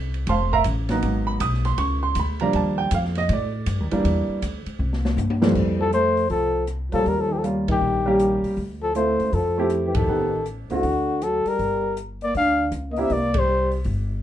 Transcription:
Already playing: upright bass C2
0.14 ride
0.27 upright bass F1, grand piano C5 F5 A5 C6, kick, ride
0.52 grand piano A#4 E5 F5 A#5, kick
0.64 upright bass A1, hi-hat pedal, ride
0.89 grand piano F#3 A#3 B3 D#4, snare, ride
1.02 upright bass G#1, kick, ride
1.27 grand piano B5
1.40 upright bass B1, grand piano D#6, kick, hi-hat pedal, ride
1.54 snare
1.65 grand piano C6, snare, ride
1.78 upright bass C#2, grand piano C#6, kick, ride
2.03 grand piano C6
2.15 upright bass D2, kick, hi-hat pedal, ride
2.20 grand piano B5
2.40 grand piano F3 G3 A#3 D4 A#5, ride
2.53 upright bass D#2, grand piano A5, kick, ride
2.78 grand piano G5
2.91 upright bass F2, grand piano F5, kick, hi-hat pedal, ride
3.05 snare
3.15 grand piano D#5, snare, ride
3.29 upright bass A2, kick, ride
3.33 grand piano D5
3.66 upright bass G2, kick, hi-hat pedal, ride
3.80 upright bass D#2
3.91 upright bass D2, grand piano E3 G3 A#3 D4, ride
4.04 upright bass E2, kick, ride
4.29 muted upright bass stroke
4.42 upright bass D2, kick, hi-hat pedal, ride
4.66 muted upright bass stroke, ride
4.79 upright bass C2
4.93 snare
5.05 snare
5.17 upright bass G2, hi-hat pedal, high tom
5.30 high tom
5.42 grand piano F2 E3 G3 A3 C4, snare
5.55 upright bass F2, kick, crash
5.79 trombone F3, trumpet A4
5.92 trombone A3, trumpet C5, closed hi-hat
6.17 open hi-hat
6.29 upright bass C2, trombone F3, trumpet A4, kick, open hi-hat
6.67 cross-stick, closed hi-hat
6.92 upright bass A#2, trombone F3, grand piano G3 A#3 C#4 F4, trumpet A4, open hi-hat
7.06 upright bass D#2, trombone G3, trumpet A#4, kick, open hi-hat
7.17 trombone F3, trumpet A4
7.28 trombone D#3
7.33 trombone F3, trumpet G4
7.38 trumpet A4
7.43 grand piano G3 A#3 C#4 F4, closed hi-hat
7.68 upright bass A#2, trombone D#3, trumpet G4, kick, ride
7.81 upright bass A#1
8.06 grand piano G3 A#3 C#4 G4
8.19 cross-stick, closed hi-hat
8.44 muted upright bass stroke, open hi-hat
8.57 upright bass D2, kick, open hi-hat
8.82 trombone F3, trumpet A4
8.95 trombone A3, grand piano A3 C4 E4 F4, trumpet C5, closed hi-hat
9.19 upright bass C#2, open hi-hat
9.32 upright bass F2, trombone F3, trumpet A4, kick, open hi-hat
9.58 grand piano A3 C4 E4 G4
9.70 cross-stick, closed hi-hat
9.85 trombone E3, trumpet G4
9.94 trombone D#3, trumpet A4, kick, ride
10.07 upright bass A1, grand piano B3 C4 D#4 G4
10.46 closed hi-hat
10.70 upright bass C#2, trombone D3, grand piano A3 C4 E4 F#4, trumpet F#4, open hi-hat
10.83 upright bass D2, kick, open hi-hat
11.22 trombone F#3, trumpet A4, cross-stick, closed hi-hat
11.45 trombone G3, trumpet A#4, muted upright bass stroke, open hi-hat
11.59 upright bass G1, kick, open hi-hat
11.97 closed hi-hat
12.21 trombone A#3, trumpet D5, open hi-hat
12.35 upright bass D2, trombone D4, trumpet F5, kick, open hi-hat
12.71 upright bass C#2, cross-stick, closed hi-hat
12.91 trombone A#3, trumpet D#5
12.96 grand piano A#3 D4 E4 G4, trombone C4, trumpet E5, open hi-hat
13.10 upright bass C2, trumpet D5, kick, open hi-hat
13.14 trombone A#3
13.34 trombone G3, kick, ride
13.39 trumpet C5
13.72 open hi-hat
13.84 upright bass G1, kick, open hi-hat

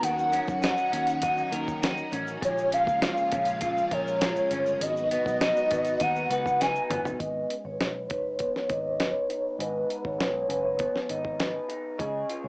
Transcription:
Already playing: clean electric guitar F#4 A#4, string machine F#4 A#4
0.03 picked electric bass D#2, string machine D#3 F#3 C#4, clean electric guitar D#3, soft synth lead F#5, closed hi-hat, shaker
0.19 shaker
0.32 clean electric guitar C#4, closed hi-hat, shaker
0.48 picked electric bass F#2, kick, shaker
0.62 clean electric guitar D#4, soft synth lead F#5, snare, closed hi-hat, shaker
0.77 shaker
0.92 picked electric bass D#2, clean electric guitar C#4, closed hi-hat, shaker
1.07 closed hi-hat, shaker
1.22 clean electric guitar D#4, kick, closed hi-hat, shaker
1.38 shaker
1.52 picked electric bass D#2, clean electric guitar A#4, closed hi-hat
1.68 kick, shaker
1.82 clean electric guitar D#4, snare, closed hi-hat, shaker
1.97 shaker
2.12 picked electric bass A1, clean electric guitar C#4, closed hi-hat, shaker
2.27 shaker
2.41 picked electric bass A#1, clean electric guitar A#2, string machine C#3 F3 G#3 F4, soft synth lead C#5, kick, closed hi-hat, shaker
2.58 shaker
2.72 clean electric guitar C#4, soft synth lead F5, closed hi-hat, shaker
2.87 picked electric bass C#2, kick, shaker
3.02 clean electric guitar F4, snare, closed hi-hat, shaker
3.17 shaker
3.32 picked electric bass A#1, clean electric guitar C#4, soft synth lead F5, kick, closed hi-hat, shaker
3.45 closed hi-hat, shaker
3.61 clean electric guitar F4, kick, closed hi-hat, shaker
3.78 shaker
3.91 picked electric bass A#1, clean electric guitar A#4, soft synth lead C#5, kick, closed hi-hat
4.08 shaker
4.21 clean electric guitar F4, snare, closed hi-hat, shaker
4.36 shaker
4.51 picked electric bass G1, clean electric guitar C#4, closed hi-hat, shaker
4.66 shaker
4.81 picked electric bass G#1, string machine D#3 F#3 B3 F#4, soft synth lead D#5, closed hi-hat, shaker
4.97 shaker
5.11 clean electric guitar B3, closed hi-hat, shaker
5.26 picked electric bass B1, kick, shaker
5.40 clean electric guitar D#4, snare, closed hi-hat, shaker
5.56 shaker
5.71 picked electric bass G#1, clean electric guitar B3, kick, closed hi-hat, shaker
5.85 closed hi-hat, shaker
6.00 picked electric bass D#2, clean electric guitar D#4, soft synth lead F#5, kick, closed hi-hat, shaker
6.16 shaker
6.30 picked electric bass C#2, clean electric guitar B4, soft synth lead F#5, closed hi-hat, shaker
6.46 kick, shaker
6.60 clean electric guitar D#4, soft synth lead G#5, snare, closed hi-hat, shaker
6.76 shaker
6.90 picked electric bass G1, clean electric guitar B3, closed hi-hat, mid tom, shaker
7.05 floor tom, shaker
7.19 picked electric bass G#1, clean electric guitar G#2 B4, soft synth lead B4, vibraphone D#5, kick, closed hi-hat
7.50 clean electric guitar C#4, closed hi-hat
7.65 picked electric bass G#1, clean electric guitar D#4, vibraphone C#5
7.79 picked electric bass B1, clean electric guitar B4, soft synth lead C#5, snare, closed hi-hat
8.09 picked electric bass F#1, clean electric guitar D#4, vibraphone B4, kick, closed hi-hat
8.39 clean electric guitar B3, kick, closed hi-hat
8.56 snare
8.69 picked electric bass G#1, clean electric guitar D#4, vibraphone D#5, kick, closed hi-hat
8.99 clean electric guitar B4, snare, closed hi-hat
9.29 clean electric guitar D#4, closed hi-hat
9.59 picked electric bass G#1, clean electric guitar G#2 B4, soft synth lead B4, vibraphone D#5, closed hi-hat
9.88 clean electric guitar D#4, closed hi-hat
10.04 picked electric bass G#1, vibraphone C#5, kick
10.18 picked electric bass B1, clean electric guitar B4, snare, closed hi-hat
10.23 soft synth lead C#5
10.49 picked electric bass F#1, clean electric guitar C#4, vibraphone B4, closed hi-hat
10.64 clean electric guitar D#4
10.78 clean electric guitar B3, kick, closed hi-hat
10.96 snare
11.09 picked electric bass G#1, clean electric guitar D#4, vibraphone D#5, closed hi-hat
11.25 kick
11.39 clean electric guitar B4, snare, closed hi-hat
11.69 clean electric guitar D#4, closed hi-hat
11.98 picked electric bass C#2, clean electric guitar C#3 G#4, vibraphone D#5, kick, closed hi-hat
12.30 clean electric guitar F4, closed hi-hat
12.44 picked electric bass C#2, vibraphone C#5

